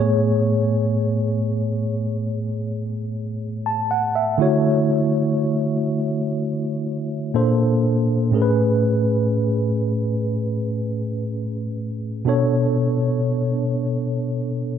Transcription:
0.00 3.85 A2 medium
0.00 3.86 A3 medium
0.00 3.86 B3 medium
0.00 3.87 G#4 medium
0.00 3.87 C#5 medium
3.66 3.89 A5 medium
3.91 4.14 F#5 medium
4.15 4.62 E5 medium
4.38 7.29 D3 medium
4.38 7.30 A3 medium
4.38 7.31 E4 medium
4.38 7.31 F#4 medium
4.42 7.32 C#5 medium
7.34 8.32 A#2 medium
7.34 8.33 A#3 medium
7.34 8.33 D4 medium
7.34 8.33 A4 medium
7.34 8.33 C5 medium
8.31 12.21 A2 medium
8.31 12.22 A3 medium
8.31 12.22 C#4 medium
8.31 12.23 G#4 medium
8.35 8.40 A#4 medium
8.42 12.27 B4 medium
12.25 14.79 B2 medium
12.25 14.79 B3 medium
12.25 14.79 D4 medium
12.25 14.79 A4 medium
12.29 14.79 C#5 medium

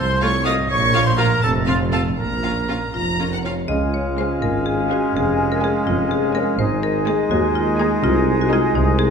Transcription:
0.00 0.58 C2 medium
0.00 0.24 C5 medium
0.00 0.21 C6 medium
0.21 0.30 A3 medium
0.21 0.30 F4 medium
0.21 0.45 C#5 medium
0.21 0.29 F5 soft
0.21 0.45 C#6 medium
0.45 0.54 A3 medium
0.45 0.54 F4 soft
0.45 0.69 D#5 medium
0.45 0.53 F5 medium
0.45 0.54 D#6 medium
0.69 1.30 A#1 medium
0.69 1.31 A#2 medium
0.69 1.06 C#5 medium
0.69 1.05 C#6 medium
0.93 1.01 A#3 medium
0.93 1.01 F4 medium
0.93 1.01 F5 medium
1.05 1.12 C5 medium
1.05 1.18 C6 medium
1.17 1.26 A#3 medium
1.17 1.26 F4 medium
1.17 1.42 A#4 medium
1.17 1.26 F5 medium
1.17 1.43 A#5 medium
1.42 2.05 F1 medium
1.42 2.05 F2 medium
1.42 1.54 A4 medium
1.42 1.50 A5 medium
1.66 1.75 C4 medium
1.66 1.75 F4 soft
1.66 1.79 F4 medium
1.66 1.74 F5 medium
1.66 1.75 F5 soft
1.92 2.00 C4 soft
1.92 2.00 F4 soft
1.92 2.03 A4 medium
1.92 2.00 F5 soft
1.92 2.00 A5 medium
2.17 2.81 A#1 medium
2.17 2.80 A#2 soft
2.17 2.92 A#4 medium
2.17 2.92 A#5 medium
2.43 2.51 C#4 soft
2.43 2.51 F4 soft
2.43 2.51 F5 soft
2.68 2.76 C#4 soft
2.68 2.77 F4 soft
2.68 2.77 F5 soft
2.93 3.56 F1 soft
2.93 3.57 F1 soft
2.93 3.56 F2 soft
2.93 3.17 F4 medium
2.93 3.29 A#5 soft
3.19 3.27 C#4 soft
3.19 3.27 F4 soft
3.19 3.43 A#4 medium
3.33 3.38 F#5 soft
3.43 3.53 C#4 soft
3.43 3.53 F4 soft
3.43 3.67 C#5 medium
3.43 3.53 F5 soft
3.68 4.27 C#2 medium
3.68 4.27 C#3 medium
3.68 6.56 G#3 medium
3.68 6.56 C#4 medium
3.68 5.11 F4 medium
3.68 3.91 D#5 medium
3.68 6.56 F5 medium
3.68 6.57 G#5 medium
3.94 4.16 C#5 medium
4.17 4.36 G#3 medium
4.17 4.36 C#4 medium
4.17 4.41 C5 medium
4.17 4.36 F5 medium
4.42 5.00 G#1 medium
4.42 5.00 G#2 medium
4.42 4.65 A#4 medium
4.66 4.89 G#4 medium
4.90 5.08 G#3 medium
4.90 5.08 C#4 medium
4.90 5.13 F#4 medium
4.90 5.09 F5 medium
5.15 5.73 F1 medium
5.15 5.73 F2 medium
5.15 6.58 C#4 medium
5.15 5.50 G#4 medium
5.52 5.63 A#4 medium
5.62 5.81 G#3 medium
5.62 5.82 C#4 medium
5.62 5.86 G#4 medium
5.62 5.81 G#5 medium
5.87 6.45 F1 medium
5.87 6.45 F2 medium
5.87 6.10 F4 medium
6.11 6.34 G#4 medium
6.35 6.54 G#3 medium
6.35 6.53 C#4 medium
6.35 6.58 A#4 medium
6.35 6.54 G#5 medium
6.59 7.17 G#1 medium
6.59 7.17 G#2 medium
6.59 9.10 G#3 medium
6.59 9.10 D#4 medium
6.59 6.82 C5 medium
6.59 9.10 D#5 medium
6.59 9.10 G#5 medium
6.83 7.06 A#4 medium
7.07 7.26 G#3 medium
7.07 7.26 D#4 medium
7.07 7.30 G#4 medium
7.07 7.26 G#5 medium
7.31 7.89 D#2 medium
7.31 7.90 D#2 medium
7.31 7.54 F#4 medium
7.55 7.78 F4 medium
7.78 7.98 G#3 medium
7.78 7.97 D#4 medium
7.78 8.02 D#4 medium
7.78 7.98 G#5 medium
8.04 8.61 C2 medium
8.04 8.62 C3 medium
8.04 8.38 F4 loud
8.41 8.52 F#4 medium
8.51 8.70 G#3 medium
8.51 8.69 D#4 medium
8.51 8.75 F4 medium
8.51 8.70 G#5 medium
8.75 9.10 C2 medium
8.75 9.10 C3 medium
8.75 8.98 D#4 medium
8.99 9.10 G#4 medium

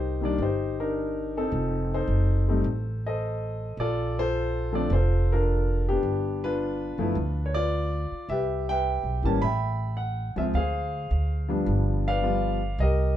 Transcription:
0.00 0.35 C2 medium
0.00 0.40 D#4 medium
0.00 0.40 G4 medium
0.00 0.37 A#4 medium
0.00 0.20 C5 medium
0.21 0.37 D#3 medium
0.21 0.38 G3 soft
0.21 0.38 A#3 soft
0.21 0.38 D4 medium
0.21 0.40 D5 medium
0.38 1.48 G1 medium
0.38 0.79 D#4 medium
0.38 1.49 G4 soft
0.38 0.81 C5 medium
0.80 1.49 D4 medium
0.80 1.36 D#4 medium
0.80 1.37 A#4 medium
1.37 2.45 C4 medium
1.37 1.93 D#4 medium
1.37 1.93 A4 medium
1.52 2.04 F1 medium
1.94 2.48 D#4 medium
1.94 3.02 A4 medium
1.94 3.02 C5 medium
2.07 2.60 F#1 medium
2.48 2.64 G3 medium
2.48 2.64 A3 soft
2.48 2.64 C4 medium
2.48 2.65 D#4 medium
2.64 3.74 A1 medium
3.06 3.76 A4 medium
3.06 3.76 C5 medium
3.06 3.75 D#5 medium
3.77 4.87 A#1 medium
3.77 4.19 F4 medium
3.77 4.19 A4 medium
3.77 4.19 D5 medium
4.19 4.93 F4 medium
4.19 4.93 A4 medium
4.19 4.76 C5 loud
4.72 4.89 F3 medium
4.72 4.89 A3 medium
4.72 4.89 C4 medium
4.72 4.90 D4 medium
4.72 4.91 D5 medium
4.90 5.99 F1 medium
4.90 5.32 C5 medium
4.94 5.32 F4 medium
4.94 6.02 A4 medium
5.32 5.88 D4 medium
5.32 6.02 F4 medium
5.32 5.84 A#4 medium
5.89 6.97 B3 medium
5.89 6.44 D4 medium
5.89 6.46 G4 medium
6.03 6.95 G1 medium
6.44 7.53 D4 medium
6.44 7.53 F4 medium
6.44 7.50 B4 loud
6.98 7.15 F#1 medium
6.98 7.15 F3 medium
6.98 7.15 A3 medium
6.98 7.15 B3 medium
6.98 7.15 E4 medium
7.15 8.07 D2 medium
7.46 7.56 C#5 medium
7.54 8.26 F4 medium
7.54 8.26 B4 medium
7.54 8.31 D5 medium
8.11 muted upright bass stroke soft
8.29 9.00 C2 medium
8.29 9.39 G4 medium
8.29 8.69 B4 medium
8.29 8.66 E5 medium
8.69 9.40 B4 medium
8.69 9.40 E5 medium
8.69 9.27 G5 loud
9.03 9.22 B1 medium
9.23 9.40 G#1 medium
9.23 9.40 E3 medium
9.23 9.41 G3 medium
9.23 9.41 A#3 medium
9.23 9.41 C#4 medium
9.23 9.41 A5 medium
9.42 10.33 A1 medium
9.42 10.36 E5 medium
9.42 10.52 G5 medium
9.42 9.94 B5 medium
9.97 10.38 F#5 medium
10.36 10.53 C#2 medium
10.36 10.53 F3 medium
10.36 10.53 G#3 soft
10.36 10.53 C4 soft
10.36 10.53 F4 medium
10.36 10.43 E5 medium
10.54 11.07 D2 medium
10.54 11.65 G#4 medium
10.54 11.64 C5 medium
10.54 11.46 F5 medium
11.11 11.63 D2 medium
11.48 12.20 F3 medium
11.48 12.20 G3 medium
11.48 12.20 B3 medium
11.48 12.20 D4 medium
11.66 12.75 G1 medium
12.08 12.77 B4 medium
12.08 12.77 D5 medium
12.08 12.83 F5 medium
12.22 12.58 F3 medium
12.22 12.58 G3 medium
12.22 12.59 B3 soft
12.22 12.59 F4 medium
12.78 13.17 C2 medium
12.78 13.17 G4 medium
12.78 13.17 A#4 medium
12.78 13.16 D#5 medium

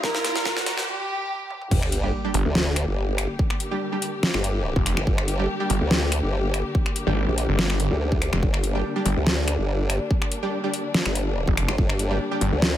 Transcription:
0.00 0.83 A#2 medium
0.00 0.83 G3 medium
0.00 0.83 D4 medium
0.00 0.85 F4 medium
0.00 0.87 G4 medium
0.00 0.87 A#4 medium
0.00 0.80 A#4 loud
0.00 0.88 D5 medium
0.00 0.87 C6 medium
0.00 kick loud
0.00 snare medium
0.00 riser medium
0.15 snare medium
0.24 snare medium
0.24 closed hi-hat medium
0.36 snare medium
0.45 kick loud
0.45 snare loud
0.57 snare medium
0.66 snare loud
0.66 closed hi-hat medium
0.78 snare loud
0.87 1.63 G4 loud
1.50 high tom medium
1.61 mid tom medium
1.71 2.12 G1 loud
1.71 12.77 D3 medium
1.71 12.77 G3 medium
1.71 12.77 A#3 medium
1.71 8.41 G4 medium
1.71 kick loud
1.71 crash loud
1.71 sub drop medium
1.82 finger snap medium
1.92 closed hi-hat medium
2.03 2.22 G3 medium
2.03 2.22 D4 medium
2.03 2.22 G4 medium
2.24 2.38 G3 medium
2.24 2.38 D4 medium
2.24 2.38 G4 loud
2.34 2.44 G1 loud
2.34 closed hi-hat medium
2.45 2.86 D2 medium
2.55 snare loud
2.76 finger snap medium
2.76 closed hi-hat medium
2.87 3.28 G1 loud
3.18 finger snap medium
3.18 closed hi-hat medium
3.39 kick loud
3.50 finger snap medium
3.60 closed hi-hat medium
3.71 3.85 G3 medium
3.71 3.85 D4 medium
3.71 3.85 G4 loud
3.92 4.00 G3 medium
3.92 4.00 D4 medium
3.92 4.00 G4 medium
4.02 closed hi-hat medium
4.23 snare loud
4.34 4.74 G1 loud
4.34 finger snap medium
4.44 closed hi-hat medium
4.76 4.95 F1 loud
4.76 kick loud
4.86 finger snap medium
4.86 closed hi-hat medium
4.97 5.05 G1 loud
4.97 finger snap medium
5.07 5.47 G1 loud
5.07 kick loud
5.18 finger snap medium
5.28 closed hi-hat medium
5.39 5.57 G3 medium
5.39 5.57 D4 medium
5.39 5.57 G4 medium
5.60 5.73 G3 loud
5.60 5.73 D4 medium
5.60 5.73 G4 loud
5.70 5.79 G1 loud
5.70 closed hi-hat medium
5.81 6.21 D2 loud
5.91 snare loud
6.12 finger snap medium
6.12 closed hi-hat medium
6.23 6.63 G1 loud
6.54 finger snap medium
6.54 closed hi-hat medium
6.75 kick loud
6.86 finger snap medium
6.96 closed hi-hat medium
7.07 7.26 G#1 loud
7.07 7.20 G3 medium
7.07 7.20 D4 medium
7.07 7.20 G4 medium
7.28 7.47 A#1 loud
7.38 closed hi-hat medium
7.49 7.89 G1 loud
7.59 snare loud
7.70 finger snap medium
7.80 closed hi-hat medium
7.91 8.31 D2 loud
8.12 kick loud
8.22 finger snap medium
8.22 closed hi-hat medium
8.33 8.41 F1 loud
8.33 finger snap medium
8.43 8.83 G1 medium
8.43 12.77 D4 medium
8.43 kick loud
8.54 finger snap medium
8.64 closed hi-hat medium
8.75 8.93 G3 medium
8.75 8.93 D4 medium
8.75 8.93 G4 medium
8.96 9.09 G3 loud
8.96 9.09 D4 medium
8.96 9.09 G4 loud
9.06 9.15 G1 loud
9.06 closed hi-hat medium
9.17 9.57 D2 loud
9.27 snare loud
9.48 finger snap medium
9.48 closed hi-hat medium
9.59 9.99 G1 loud
9.90 finger snap medium
9.90 closed hi-hat medium
10.11 kick loud
10.22 finger snap medium
10.32 closed hi-hat medium
10.43 10.56 G3 medium
10.43 10.56 D4 medium
10.43 10.56 G4 loud
10.64 10.72 G3 medium
10.64 10.72 D4 medium
10.64 10.72 G4 loud
10.74 closed hi-hat medium
10.94 snare loud
11.06 11.46 G1 loud
11.06 finger snap medium
11.15 closed hi-hat medium
11.48 11.67 F1 medium
11.48 kick loud
11.57 finger snap medium
11.57 closed hi-hat medium
11.68 11.77 G1 loud
11.68 finger snap medium
11.78 12.19 G1 medium
11.78 kick loud
11.90 finger snap medium
11.99 closed hi-hat medium
12.10 12.29 G3 medium
12.10 12.29 D4 medium
12.10 12.29 G4 medium
12.31 12.45 G3 loud
12.31 12.45 D4 medium
12.31 12.45 G4 loud
12.41 12.51 G1 loud
12.41 closed hi-hat medium
12.52 12.77 D2 loud
12.62 snare loud

